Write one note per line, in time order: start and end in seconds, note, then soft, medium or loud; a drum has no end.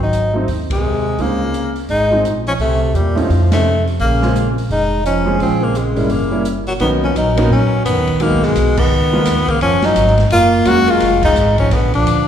0.00 0.44 G#1 medium
0.00 0.32 F#3 medium
0.00 0.34 D#4 medium
0.13 closed hi-hat soft
0.33 0.46 F#3 medium
0.33 0.46 A3 medium
0.33 0.47 C4 medium
0.33 0.47 D#4 medium
0.48 1.15 D#2 medium
0.48 kick soft
0.48 open hi-hat soft
0.70 1.22 C3 medium
0.70 1.23 G#3 medium
0.70 kick medium
0.70 ride medium
1.19 1.85 C#2 medium
1.19 1.77 C#3 medium
1.19 1.38 F3 soft
1.19 1.39 G#3 soft
1.19 1.77 A#3 medium
1.19 1.39 C4 soft
1.19 1.40 D#4 soft
1.19 kick soft
1.19 open hi-hat soft
1.54 closed hi-hat soft
1.76 open hi-hat soft
1.89 2.22 G#1 medium
1.89 2.22 G#3 medium
1.89 2.22 D#4 medium
1.89 kick soft
1.89 open hi-hat soft
2.11 2.23 F3 medium
2.11 2.23 G#3 medium
2.11 2.23 C4 medium
2.11 2.24 D#4 medium
2.24 2.57 A#1 medium
2.24 closed hi-hat soft
2.47 2.53 F3 medium
2.47 2.53 C#4 medium
2.47 open hi-hat soft
2.59 2.92 C2 medium
2.59 2.97 C3 medium
2.59 2.97 A3 medium
2.59 kick soft
2.59 open hi-hat soft
2.94 3.27 E2 medium
2.94 3.19 A#2 medium
2.94 3.20 G3 medium
2.94 closed hi-hat soft
3.15 3.51 A2 medium
3.15 3.52 F3 medium
3.15 3.28 A3 medium
3.15 3.28 C4 medium
3.15 3.28 C#4 medium
3.15 3.28 D#4 medium
3.15 open hi-hat soft
3.30 3.96 F2 medium
3.30 kick soft
3.30 open hi-hat soft
3.52 3.85 C3 medium
3.52 3.63 A3 medium
3.52 3.85 A3 medium
3.52 3.64 C4 medium
3.52 3.64 C#4 medium
3.52 3.64 D#4 medium
3.52 snare medium
3.52 ride medium
3.87 open hi-hat soft
4.00 4.67 A#1 medium
4.00 4.54 C#3 medium
4.00 4.53 A#3 medium
4.00 kick soft
4.00 open hi-hat soft
4.22 4.34 G#3 medium
4.22 4.34 C4 medium
4.22 4.35 C#4 medium
4.22 4.35 F4 medium
4.22 snare soft
4.36 closed hi-hat soft
4.58 open hi-hat soft
4.70 5.37 F1 medium
4.70 5.03 G#3 medium
4.70 5.04 D#4 medium
4.70 kick soft
4.70 open hi-hat soft
5.05 5.38 F3 medium
5.05 5.38 C#4 medium
5.05 closed hi-hat soft
5.26 5.72 G#3 medium
5.26 5.72 C4 medium
5.26 5.73 C#4 medium
5.26 5.73 G#4 medium
5.40 5.93 A#1 medium
5.40 5.63 F3 medium
5.40 5.65 C4 medium
5.40 kick soft
5.40 open hi-hat soft
5.61 5.74 C#3 medium
5.61 5.78 A#3 medium
5.74 6.09 C#3 medium
5.74 6.13 G#3 medium
5.74 closed hi-hat soft
5.95 6.09 G#1 medium
5.95 6.08 G3 medium
5.95 6.09 A#3 soft
5.95 6.09 C#4 soft
5.95 6.09 E4 medium
5.95 open hi-hat soft
6.09 6.77 F#1 medium
6.09 6.45 C#3 medium
6.09 6.46 A#3 medium
6.09 kick soft
6.09 open hi-hat soft
6.30 6.43 G3 medium
6.30 6.44 A#3 soft
6.30 6.44 C#4 soft
6.30 6.44 E4 medium
6.45 closed hi-hat medium
6.67 6.73 A#2 soft
6.67 6.73 F#3 medium
6.67 open hi-hat soft
6.79 7.14 B1 medium
6.79 6.90 D#3 medium
6.79 7.00 F#3 medium
6.79 7.01 A#3 soft
6.79 7.01 B3 medium
6.79 6.91 B3 medium
6.79 7.01 C#4 medium
6.79 7.01 D#4 medium
6.79 kick soft
6.79 ride soft
7.02 7.14 F3 medium
7.02 7.16 C#4 medium
7.14 7.50 A#1 medium
7.14 7.48 F#3 medium
7.14 7.49 D#4 medium
7.14 kick soft
7.14 hi-hat pedal soft
7.14 ride medium
7.35 7.48 F#3 medium
7.35 7.49 A#3 medium
7.35 7.49 B3 medium
7.35 7.49 C#4 medium
7.35 7.50 D#4 medium
7.35 ride medium
7.50 7.84 A#2 medium
7.50 7.83 F#3 medium
7.50 7.84 C#4 medium
7.50 kick soft
7.85 7.97 F#2 medium
7.85 8.21 D#3 medium
7.85 8.23 B3 medium
7.85 kick soft
7.85 hi-hat pedal medium
7.85 ride medium
7.97 8.08 D#2 medium
8.07 8.20 B1 medium
8.07 ride soft
8.20 8.32 D#2 medium
8.20 8.45 D#3 medium
8.20 8.41 F#3 medium
8.20 8.41 G#3 medium
8.20 8.41 A#3 soft
8.20 8.46 A#3 medium
8.20 8.41 B3 medium
8.20 8.42 D#4 medium
8.20 kick soft
8.20 ride medium
8.30 8.42 B1 medium
8.42 8.54 G#1 medium
8.42 8.80 B2 medium
8.42 8.80 G#3 medium
8.42 snare soft
8.55 8.89 B1 medium
8.55 kick soft
8.55 hi-hat pedal medium
8.55 ride medium
8.77 9.50 D#3 medium
8.77 9.51 B3 loud
8.77 kick medium
8.77 crash medium
8.89 9.24 C#2 medium
9.13 9.25 F3 medium
9.13 9.25 G#3 medium
9.13 9.25 A#3 medium
9.13 9.25 B3 medium
9.13 9.25 F4 medium
9.25 9.46 D#2 medium
9.25 kick soft
9.25 snare soft
9.25 hi-hat pedal medium
9.25 ride medium
9.48 9.61 C#3 medium
9.48 9.62 A#3 medium
9.48 muted upright bass stroke soft
9.48 kick medium
9.48 ride soft
9.61 9.95 F#1 medium
9.61 9.83 F3 medium
9.61 9.87 C#4 loud
9.61 kick soft
9.61 ride medium
9.81 10.17 F#3 medium
9.81 10.19 D#4 loud
9.81 snare medium
9.81 ride soft
9.96 10.29 G#1 medium
9.96 kick soft
9.96 hi-hat pedal medium
9.96 ride medium
10.07 snare soft
10.18 snare soft
10.18 ride soft
10.30 10.65 F#1 medium
10.30 10.67 A#3 medium
10.30 10.69 F4 loud
10.30 kick soft
10.30 ride medium
10.65 11.00 E1 medium
10.65 11.00 F#3 medium
10.65 11.01 G#3 medium
10.65 11.01 A#3 medium
10.65 10.90 A#3 medium
10.65 11.01 C#4 medium
10.65 11.01 F4 medium
10.65 10.92 F#4 loud
10.65 kick soft
10.65 hi-hat pedal medium
10.65 ride medium
10.88 11.23 G#3 medium
10.88 11.24 F4 loud
10.88 ride soft
11.00 11.34 F1 medium
11.00 kick soft
11.00 snare soft
11.00 ride medium
11.23 11.56 G#3 medium
11.23 11.56 D#4 medium
11.23 kick medium
11.23 crash medium
11.35 11.69 G#1 medium
11.35 hi-hat pedal medium
11.58 11.74 F3 medium
11.58 11.75 C#4 medium
11.58 kick medium
11.58 ride soft
11.71 12.05 A#1 medium
11.71 11.94 D3 medium
11.71 11.94 B3 medium
11.71 kick soft
11.71 snare soft
11.71 ride medium
11.93 12.27 F3 medium
11.93 12.27 D4 medium
11.93 kick medium
11.93 ride soft
12.06 12.28 D2 medium
12.06 hi-hat pedal soft
12.06 ride medium